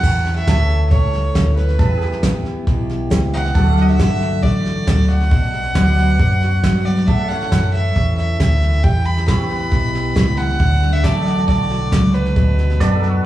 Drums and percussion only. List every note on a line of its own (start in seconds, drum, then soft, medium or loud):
0.03 kick loud
0.03 snare soft
0.03 crash loud
0.26 snare soft
0.36 snare soft
0.47 kick medium
0.47 snare loud
0.47 hi-hat pedal medium
0.69 snare soft
0.91 kick loud
0.91 snare soft
1.13 snare soft
1.35 kick loud
1.35 snare loud
1.35 hi-hat pedal medium
1.57 snare soft
1.68 snare soft
1.79 kick loud
1.79 snare soft
2.01 snare soft
2.12 snare soft
2.23 kick medium
2.23 snare loud
2.23 hi-hat pedal medium
2.45 snare soft
2.67 kick loud
2.67 snare soft
2.89 snare soft
3.11 kick medium
3.11 snare loud
3.11 hi-hat pedal medium
3.33 snare soft
3.44 snare soft
3.55 kick loud
3.55 snare soft
3.77 snare soft
3.89 snare soft
3.99 kick medium
3.99 snare loud
3.99 hi-hat pedal medium
4.22 snare soft
4.43 kick loud
4.43 snare soft
4.66 snare soft
4.87 kick loud
4.87 snare loud
4.87 hi-hat pedal loud
5.09 snare soft
5.20 snare soft
5.31 kick loud
5.31 snare soft
5.53 snare soft
5.64 snare soft
5.75 kick medium
5.75 snare loud
5.75 hi-hat pedal medium
5.97 snare soft
6.19 kick loud
6.19 snare soft
6.42 snare soft
6.64 kick medium
6.64 snare loud
6.64 hi-hat pedal medium
6.86 snare soft
6.97 snare soft
7.08 kick loud
7.08 snare soft
7.30 snare soft
7.41 snare soft
7.52 kick medium
7.52 snare loud
7.52 hi-hat pedal medium
7.74 snare soft
7.96 kick loud
7.96 snare soft
8.18 snare soft
8.40 kick medium
8.40 snare loud
8.40 hi-hat pedal medium
8.62 snare soft
8.73 snare soft
8.84 kick loud
8.84 snare soft
9.06 snare soft
9.17 snare soft
9.28 kick medium
9.28 snare loud
9.28 hi-hat pedal medium
9.50 snare soft
9.72 kick loud
9.72 snare soft
9.94 snare soft
10.16 kick loud
10.16 snare loud
10.16 hi-hat pedal loud
10.38 snare soft
10.49 snare soft
10.60 kick loud
10.60 snare soft
10.82 snare soft
10.94 snare soft
11.04 kick medium
11.04 snare loud
11.04 hi-hat pedal medium
11.26 snare soft
11.48 kick loud
11.48 snare soft
11.70 snare soft
11.92 kick loud
11.92 snare loud
11.92 hi-hat pedal loud
12.14 snare soft
12.25 snare soft
12.36 kick loud
12.36 snare soft
12.58 snare soft
12.70 snare soft
12.80 kick medium
12.80 snare loud
12.80 hi-hat pedal medium
13.03 snare soft